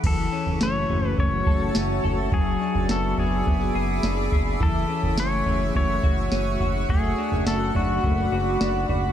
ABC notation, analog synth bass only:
X:1
M:4/4
L:1/16
Q:1/4=105
K:F#m
V:1 name="Analog synth bass" clef=bass
F,,,2 z F,,, F,,,2 F,,,2 F,,,2 F,,,2 F,,,2 F,,,2 | F,,,2 z F,,, F,,,2 F,,,2 F,,,2 F,,,2 F,,,2 F,,,2 | F,,,2 z F,,, F,,,2 F,,,2 F,,,2 F,,,2 F,,,2 F,,,2 | F,,,2 z F,,, F,,,2 F,,,2 F,,,2 F,,,2 F,,,2 F,,,2 |]